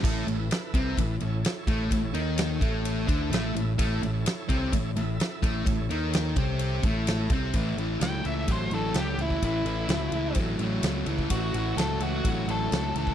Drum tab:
CC |x---------------|----------------|----------------|----------------|
RD |--x-x-x-x-x-x-x-|x-x-x-x-x-x-x-x-|x-x-x-x-x-x-x-x-|x-x-x-x-x-x-x-x-|
SD |----o-------o---|----o-------o---|----o-------o---|----o-------o---|
BD |o-----o-o-----o-|o-----o---o-----|o-----o-o-----o-|o-----o---o---o-|

CC |----------------|----------------|----------------|
RD |x-x-x-x-x-x-x-x-|x-x-x-x-x-x-x-x-|x-x-x-x-x-x-x-x-|
SD |----o-------o---|----o-------o---|----o-------o---|
BD |o-------o------o|o-------o------o|o-------o------o|